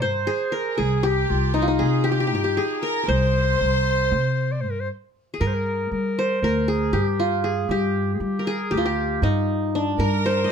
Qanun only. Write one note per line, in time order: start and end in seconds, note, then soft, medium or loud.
0.00 0.20 G#4 medium
0.00 0.39 A#4 medium
0.00 1.07 C5 loud
0.27 0.77 G#4 medium
0.52 1.65 A#4 medium
0.78 1.09 G#4 medium
1.03 1.85 G4 medium
1.54 1.67 D#4 medium
1.62 2.97 F4 medium
1.68 3.12 D#4 medium
1.79 2.10 G#4 medium
2.04 2.11 G4 medium
2.12 2.20 G4 medium
2.20 2.27 G4 medium
2.27 2.34 G4 medium
2.35 2.44 G4 medium
2.44 2.63 G4 medium
2.57 3.79 G#4 medium
2.83 3.03 A#4 medium
3.03 4.17 A#4 medium
3.08 4.84 C5 medium
5.34 6.55 G#4 medium
5.41 6.44 A#4 medium
6.19 7.24 C5 medium
6.44 7.57 A#4 medium
6.68 6.99 G#4 medium
6.93 7.50 G4 medium
7.19 8.54 F4 medium
7.44 7.77 G#4 medium
7.71 8.53 G4 medium
8.39 9.53 A#4 medium
8.47 8.77 G#4 medium
8.71 8.85 G4 medium
8.77 10.12 F4 medium
8.86 10.11 G4 medium
9.23 9.81 D#4 medium
9.75 10.50 D4 medium
10.00 10.52 A#4 medium
10.26 10.52 C5 loud
10.44 10.52 D#5 medium